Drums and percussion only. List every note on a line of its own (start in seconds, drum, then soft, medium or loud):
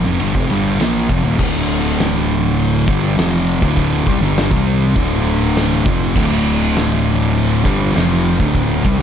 0.20 ride loud
0.35 kick loud
0.50 ride medium
0.80 snare loud
0.80 ride loud
1.09 kick loud
1.09 ride medium
1.39 kick loud
1.39 crash loud
1.99 snare loud
1.99 open hi-hat medium
2.58 open hi-hat medium
2.88 kick loud
3.18 snare loud
3.18 open hi-hat medium
3.62 kick loud
3.62 snare soft
3.77 kick loud
3.77 open hi-hat medium
4.07 kick loud
4.37 snare loud
4.37 open hi-hat medium
4.51 kick loud
4.96 kick loud
4.96 open hi-hat medium
5.56 snare loud
5.56 open hi-hat medium
5.86 kick loud
6.03 snare soft
6.16 kick loud
6.16 crash loud
6.76 snare loud
6.76 open hi-hat medium
7.35 open hi-hat medium
7.65 kick loud
7.95 snare loud
7.95 open hi-hat medium
8.40 kick loud
8.55 kick loud
8.55 open hi-hat medium
8.85 kick loud